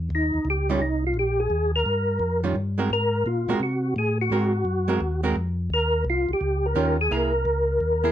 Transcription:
0.10 D#2
0.15 D#4
0.34 D#2
0.45 C#2
0.50 G4
0.69 D#3 G3 C#4 F4
0.79 C2 D#4
1.07 F4
1.14 A#1
1.19 G4
1.40 G#4
1.50 D#2
1.76 A#4
1.86 G2
2.20 F2
2.44 D#3 G3 C#4 F4
2.56 G2
2.78 G#3 C4 F#4 A#4
2.90 G#2 A#4
3.26 A#2 F4
3.48 A#2 G#3 C4 F#4 A#4
3.60 C3 F#4
3.96 A2 G#4
4.21 F#4
4.30 G#2 G#3 C4 F#4 A#4
4.65 F#2
4.88 G#3 C4 F#4 A#4
5.01 D#2
5.23 G#3 C4 F#4 A#4
5.36 F2
5.70 D#2 A#4
6.05 C2
6.10 F4
6.29 C2
6.33 G4
6.41 C#2
6.66 A#4
6.75 D#2 D#3 C#4 F4 G4
7.01 G#4
7.11 C2 A#3 E4 G#4 A#4
7.45 C#2
7.81 D#2
8.04 A#3 E4 G#4

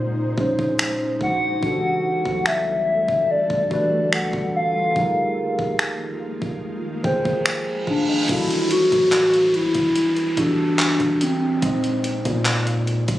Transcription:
Already playing: A#2 C#3 G#3 C#4 D#4 C5
0.36 A#1 A#2 G#3 C#4 D#4 C5, kick
0.59 kick
0.79 finger snap
1.21 A#1 F#5, kick
1.61 E1 D3 E3 G3 A3 D4 F#4 G4 A4, kick
2.25 B1, kick
2.46 E5, finger snap
3.08 E1, kick
3.31 D5
3.50 E1, kick
3.69 E3 D4 F#4 G4 B4 D5, kick
4.13 B1 F#5, finger snap
4.33 E1, kick
4.56 F5
4.95 F1 D#3 F3 G#3 A#3 D#4 F4 G4 G#4 A#4, kick
5.59 F1, kick
5.79 finger snap
6.42 F1, kick
6.62 reverse cymbal
7.03 F1 D#3 F3 G#4 G5, kick
7.07 C5
7.25 kick
7.46 G#5, finger snap
7.87 F1 D4 F5, kick
8.09 C5 D#5
8.28 E1 E3 G3 D4 E4 F#4, kick, closed hi-hat, downlifter
8.32 A4
8.51 closed hi-hat
8.71 F#4, closed hi-hat
8.92 D1, kick, closed hi-hat
9.12 clap, closed hi-hat
9.34 closed hi-hat
9.54 B1 E4, closed hi-hat
9.74 E1, kick, closed hi-hat
9.96 closed hi-hat
10.16 closed hi-hat
10.37 G1 E3 D4 F#4 G4 A4, kick, closed hi-hat
10.79 clap, closed hi-hat
11.00 E1, kick, closed hi-hat
11.21 C4, closed hi-hat
11.61 A#1 A#2 G#3 D#4 C5, kick, closed hi-hat
11.65 D#5
11.84 closed hi-hat
12.04 closed hi-hat
12.25 A#2, kick, closed hi-hat
12.45 clap, closed hi-hat
12.67 closed hi-hat
12.87 closed hi-hat
13.08 A#1, kick, closed hi-hat

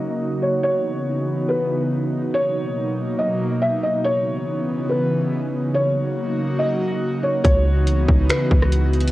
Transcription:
Already playing: C#3 F#3 A#3 D#4 F#4 D#5
0.42 C#5
0.63 C#3 E3 B3 C#5
1.49 B4
2.34 B2 F#3 A#3 C#5
3.19 D#5
3.62 E5
3.83 D#5
4.04 C#3 E3 B3 C#5
4.90 B4
5.74 F#3 A#3 D#4 F#4 C#5
6.59 D#5
7.23 C#5
7.44 C#2 C#3 E3 B3 D#4 F#4 C#5, kick, closed hi-hat
7.87 closed hi-hat
8.08 C#2, kick
8.29 B4, finger snap, closed hi-hat
8.51 C#2, kick
8.62 cross-stick
8.72 closed hi-hat
8.93 closed hi-hat
9.00 closed hi-hat
9.08 closed hi-hat

